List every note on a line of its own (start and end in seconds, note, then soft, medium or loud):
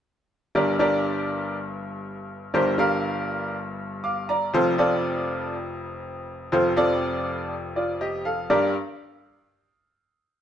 0.55 2.50 G1 medium
0.55 2.50 G2 medium
0.55 0.74 D4 medium
0.55 0.74 G4 medium
0.55 0.74 A#4 medium
0.55 0.75 D5 medium
0.79 1.56 D4 medium
0.79 1.56 G4 medium
0.79 1.56 A#4 medium
0.79 1.57 D5 medium
2.54 4.49 G1 medium
2.54 4.49 G2 medium
2.54 2.73 D4 medium
2.54 2.73 G4 medium
2.54 2.73 A#4 medium
2.54 2.74 C5 medium
2.78 3.55 D4 medium
2.78 3.55 G4 medium
2.78 3.55 A#4 medium
2.78 3.55 F5 medium
4.04 4.27 F5 medium
4.04 4.27 D6 medium
4.29 4.76 D5 medium
4.29 4.76 A#5 medium
4.53 6.48 F1 medium
4.53 6.48 F2 medium
4.53 4.72 C4 medium
4.53 4.72 F4 medium
4.53 4.73 A4 medium
4.53 4.73 C5 medium
4.78 5.54 C4 medium
4.78 5.54 F4 medium
4.78 5.54 A4 medium
4.78 5.55 D5 medium
6.52 8.46 F1 medium
6.52 8.46 F2 medium
6.52 6.71 C4 medium
6.52 6.71 F4 medium
6.52 6.71 A4 medium
6.52 6.71 C5 medium
6.76 7.52 C4 medium
6.76 7.53 F4 medium
6.76 7.53 A4 medium
6.76 7.53 D5 medium
7.76 8.00 F4 soft
7.76 7.99 D5 medium
8.01 8.24 G4 medium
8.01 8.24 D#5 medium
8.25 8.73 A4 soft
8.25 8.72 F5 medium
8.50 8.73 G2 medium
8.50 8.73 D4 medium
8.50 8.73 G4 medium
8.50 8.73 A#4 medium
8.50 8.73 D5 medium